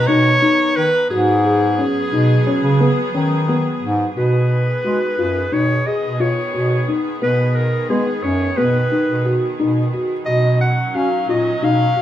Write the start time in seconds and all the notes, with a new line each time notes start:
Already playing: D#3 B3 A#5
0.07 B2 D#4 C#5
0.42 D#4
0.76 D#3 B4
1.10 G#2 F#3 B3 F#4 G#4
1.44 G#4
1.79 C#4
2.12 B2 D#4
2.47 C#4
2.63 C#3
2.80 B3
3.14 D#3 C#4
3.49 B3
3.82 G#2
4.16 B2 D#3 B3 F#4 G#4 B4
4.84 G#3 F#4
5.19 F#2 F4
5.52 B2 D#4 C#5
5.87 G#4 D#5
6.04 B2
6.20 F4 C#5
6.54 B2 F#4
6.88 D#4
7.22 B2 B3 B4
7.55 A#4
7.90 G#3 B3 G#4
8.23 F#2 C#4 C#5
8.57 B2 B3 B4
8.92 D#4
9.09 B2
9.25 F#4
9.60 B2 D#4
9.93 F#4
10.25 B2 F#3 C#4 F#4 D#5
10.61 F#5
10.94 C#4 F#4 F5
11.28 A#2 F4 D#5
11.62 B2 D#4 F5
11.96 F#4